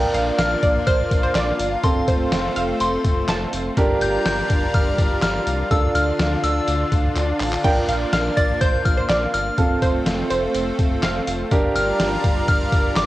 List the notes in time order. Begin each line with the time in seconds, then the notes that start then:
Already playing: A#3 D4 F4 A#4
0.14 A#1 F5, closed hi-hat
0.38 A#1 F5 F6, snare, closed hi-hat
0.63 A#1 D5, kick, closed hi-hat
0.87 A#1 C5 F6, kick, closed hi-hat
1.11 A#1, kick, closed hi-hat
1.23 C5
1.35 A#1 D5, snare, clap, closed hi-hat
1.59 G1, closed hi-hat
1.84 F1 A3 C4 F4 A4 C6, kick, closed hi-hat
2.08 F1 C5, kick, closed hi-hat
2.32 F1, snare, closed hi-hat
2.56 F1 F5, closed hi-hat
2.80 F1 C6, closed hi-hat
3.05 F1, kick, closed hi-hat
3.28 F1 A5, snare, clap, closed hi-hat
3.53 F1, closed hi-hat
3.77 G1 G3 D4 F4 G4 A#4, kick, closed hi-hat
4.01 G1 G6, closed hi-hat
4.25 G1 G6, snare, closed hi-hat
4.50 G1, kick, closed hi-hat
4.74 G1 F6, kick, closed hi-hat
4.98 G1, kick, closed hi-hat
5.22 G1 F6, snare, clap, closed hi-hat
5.47 C2, closed hi-hat
5.70 D2 D3 D4 F4 A4 E6, kick, closed hi-hat
5.95 D2 F6, closed hi-hat
6.19 D2, snare, closed hi-hat
6.43 D2 E6, closed hi-hat
6.68 D2, closed hi-hat
6.92 D2, kick, closed hi-hat
7.16 D2, clap, closed hi-hat
7.40 A1, clap, open hi-hat
7.52 clap
7.64 A#1 A#3 D4 F4 A#4 G5, kick, crash
7.88 A#1 F5, closed hi-hat
8.13 A#1 F5 F6, snare, closed hi-hat
8.37 A#1 D5 A6, kick, closed hi-hat
8.61 A#1 C5 G6, kick, closed hi-hat
8.85 A#1 F6, kick, closed hi-hat
8.97 C5
9.09 A#1 D5, snare, clap, closed hi-hat
9.34 G1 F6, closed hi-hat
9.58 F1 A3 C4 F4 A4, kick, closed hi-hat
9.82 F1 C5, kick, closed hi-hat
10.06 F1, snare, closed hi-hat
10.30 F1 C5, closed hi-hat
10.55 F1, closed hi-hat
10.79 F1, kick, closed hi-hat
11.03 F1 F5, snare, clap, closed hi-hat
11.27 F1, closed hi-hat
11.51 G1 G3 D4 F4 G4 A#4, kick, closed hi-hat
11.75 G1 F6, closed hi-hat
12.00 G1, snare, closed hi-hat
12.24 G1, kick, closed hi-hat
12.48 G1 F6, kick, closed hi-hat
12.72 G1, kick, closed hi-hat
12.96 G1 D6, snare, clap, closed hi-hat